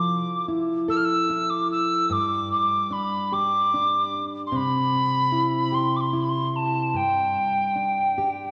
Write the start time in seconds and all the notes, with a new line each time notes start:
Already playing: F3 E4 A4 D6
0.48 E4
0.88 A4 E6
0.97 F6
1.05 E6
1.30 E4
1.50 D6
1.72 E6
2.10 G2 D6
2.52 D6
2.91 D4 B5
3.32 G4 D6
3.74 D4
4.47 C6
4.52 C3
4.56 B5
5.32 E4
5.72 G4 C6
5.96 D6
6.00 C6
6.13 E4
6.23 B5
6.29 C6
6.56 A5
6.94 G2 G5
7.76 D4
8.18 G4